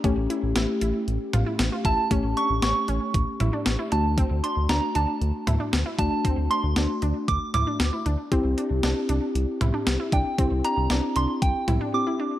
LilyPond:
<<
  \new Staff \with { instrumentName = "Synth bell" } { \time 4/4 \key d \minor \tempo 4 = 116 r2. r8 a''8~ | a''8 cis'''8 cis'''2~ cis'''8 a''8~ | a''8 c'''8 bes''8 a''4 r4 a''8~ | a''8 c'''4 r8 d'''8 d'''4 r8 |
r2. r8 g''8~ | g''8 bes''4 c'''8 g''4 d'''4 | }
  \new Staff \with { instrumentName = "Synth arpeggio sound" } { \time 4/4 \key d \minor cis'8 e'8 e'8 e'8 r8 f'16 e'8 f'16 e'8 | cis'8 d'8 cis'8 cis'8 r8 e'16 d'8 e'16 d'8 | c'8 d'8 d'8 d'8 r8 e'16 d'8 e'16 d'8 | c'8 d'8 d'8 d'8 r8 e'16 d'8 e'16 d'8 |
c'8 d'8 d'8 d'8 r8 e'16 d'8 e'16 d'8 | c'8 d'8 d'8 d'8 r8 e'16 d'8 e'16 d'8 | }
  \new Staff \with { instrumentName = "Synth keys" } { \time 4/4 \key d \minor <a cis' g'>1 | <a cis' g'>2.~ <a cis' g'>8 <a d' fis'>8~ | <a d' fis'>2.~ <a d' fis'>8 <a d' fis'>8~ | <a d' fis'>2.~ <a d' fis'>8 r8 |
<c' e' g'>1 | <c' e' g'>2. <c' e' g'>4 | }
  \new Staff \with { instrumentName = "Analog synth bass" } { \clef bass \time 4/4 \key d \minor a,,16 a,,16 r16 a,,16 a,,16 r16 a,,16 r16 a,,16 r16 a,,16 r16 a,,16 r16 a,,16 r16 | a,,16 a,,16 r16 a,,16 a,,16 r16 a,,16 r16 a,,16 r16 a,,16 r16 a,,16 r16 d,8~ | d,16 d,16 r16 d,16 d,16 r16 d,16 r16 d,16 r16 d,16 r16 d,16 r16 d,16 r16 | d,16 d,16 r16 d,16 d,16 r16 d,16 r16 d,16 r16 d,16 r16 d,16 r16 d,16 r16 |
c,16 c,16 r16 c,16 c,16 r16 c,16 r16 c,16 r16 c,16 r16 c,16 r16 c,16 r16 | c,16 c,16 r16 c,16 c,16 r16 c,16 r16 c,16 r16 c,16 r4 r16 | }
  \new DrumStaff \with { instrumentName = "Drums" } \drummode { \time 4/4 <hh bd>8 hh8 <hh sn>8 hh8 hh8 <hh toml>8 <hh sn>8 <hh bd>8 | <hh bd>8 hh8 <hh sn>8 hh8 <hh bd>8 <hh toml>8 <hh sn>8 hh8 | <hh bd>8 hh8 <hh sn>8 hh8 hh8 <hh toml>8 <hh sn>8 <hh bd>8 | <hh bd>8 hh8 <hh sn>8 hh8 <hh bd>8 <hh toml>8 <hh sn>8 hh8 |
<hh bd>8 hh8 <hh sn>8 hh8 hh8 <hh toml>8 <hh sn>8 <hh bd>8 | <hh bd>8 hh8 <hh sn>8 hh8 <hh bd>8 <hh toml>8 r4 | }
>>